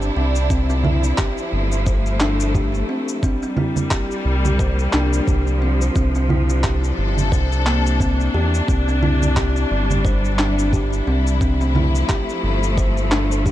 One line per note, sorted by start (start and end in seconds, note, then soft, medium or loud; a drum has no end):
0.00 0.11 G1 loud
0.00 0.50 C3 medium
0.00 1.52 C4 medium
0.00 1.60 D4 medium
0.00 3.23 E4 medium
0.00 shaker soft
0.16 1.13 C2 loud
0.16 0.49 C4 medium
0.35 shaker medium
0.50 3.23 F3 medium
0.50 0.69 C4 medium
0.50 kick loud
0.50 shaker medium
0.70 0.83 C4 medium
0.70 shaker soft
0.84 1.03 E4 medium
0.84 low conga medium
1.04 shaker medium
1.18 1.37 G4 medium
1.18 kick loud
1.18 clap medium
1.18 shaker medium
1.38 shaker soft
1.53 2.84 G1 loud
1.59 3.23 A3 medium
1.72 shaker medium
1.86 2.05 C5 medium
1.86 kick loud
1.86 shaker medium
2.06 shaker soft
2.20 2.32 D4 loud
2.20 clap medium
2.40 shaker medium
2.55 2.73 G4 medium
2.55 kick loud
2.55 shaker medium
2.74 shaker soft
2.89 3.21 C4 medium
3.08 shaker medium
3.23 5.96 G3 loud
3.23 3.42 C4 medium
3.23 kick loud
3.23 shaker medium
3.43 3.56 C4 medium
3.43 shaker soft
3.57 3.76 E4 medium
3.57 low conga medium
3.76 low conga medium
3.76 shaker medium
3.83 5.95 A#3 medium
3.91 4.10 G4 medium
3.91 kick loud
3.91 clap medium
3.91 shaker medium
4.11 shaker soft
4.25 4.88 C2 loud
4.45 8.68 F3 medium
4.45 low conga medium
4.45 shaker medium
4.59 4.78 C5 medium
4.59 kick loud
4.59 shaker medium
4.79 shaker soft
4.93 5.21 C2 loud
4.93 5.05 D4 loud
4.93 clap medium
5.13 shaker medium
5.27 5.90 C2 loud
5.27 5.46 G4 medium
5.27 kick loud
5.27 shaker medium
5.47 shaker soft
5.62 5.94 C4 medium
5.81 shaker medium
5.95 6.93 C2 loud
5.95 11.41 C3 medium
5.95 6.14 C4 medium
5.95 kick loud
5.95 shaker medium
6.15 6.28 C4 medium
6.15 shaker soft
6.29 6.48 E4 medium
6.29 low conga medium
6.47 12.51 D4 loud
6.47 shaker medium
6.64 6.82 G4 medium
6.64 kick loud
6.64 clap medium
6.64 shaker medium
6.71 8.68 A4 medium
6.84 shaker soft
6.98 7.32 G1 loud
7.18 low conga medium
7.18 shaker medium
7.32 8.29 C2 loud
7.32 7.50 C5 medium
7.32 kick loud
7.32 shaker medium
7.52 shaker soft
7.66 7.84 A#3 medium
7.66 clap medium
7.87 shaker medium
8.00 8.18 C4 medium
8.00 kick loud
8.00 shaker medium
8.20 shaker soft
8.34 8.62 E2 medium
8.34 8.53 G4 medium
8.54 shaker medium
8.68 9.65 C2 loud
8.68 8.87 C4 medium
8.68 kick loud
8.68 shaker medium
8.88 9.01 C4 medium
8.88 shaker soft
9.02 9.21 E4 medium
9.02 low conga medium
9.19 11.41 G3 medium
9.19 low conga medium
9.19 shaker medium
9.37 9.55 G4 medium
9.37 kick loud
9.37 clap medium
9.37 shaker medium
9.56 shaker soft
9.71 11.02 G1 loud
9.90 13.52 E4 medium
9.90 low conga medium
9.90 shaker medium
10.05 10.23 C5 medium
10.05 kick loud
10.05 shaker medium
10.25 shaker soft
10.39 10.50 D4 loud
10.39 clap medium
10.59 shaker medium
10.73 10.92 G4 medium
10.73 kick loud
10.73 shaker medium
10.93 shaker soft
11.07 12.04 C2 medium
11.07 11.40 C4 medium
11.27 shaker medium
11.41 13.52 F3 medium
11.41 11.60 C4 medium
11.41 kick loud
11.41 shaker medium
11.56 13.52 A3 medium
11.61 11.74 C4 medium
11.61 shaker soft
11.75 11.94 E4 medium
11.75 low conga medium
11.95 shaker medium
12.09 12.28 G4 medium
12.09 kick loud
12.09 clap medium
12.09 shaker medium
12.29 shaker soft
12.43 13.52 G1 loud
12.63 shaker medium
12.78 12.96 C5 medium
12.78 kick loud
12.78 shaker medium
12.97 shaker soft
13.11 13.23 D4 loud
13.11 clap medium
13.32 shaker medium
13.46 13.52 G4 medium
13.46 kick loud
13.46 shaker medium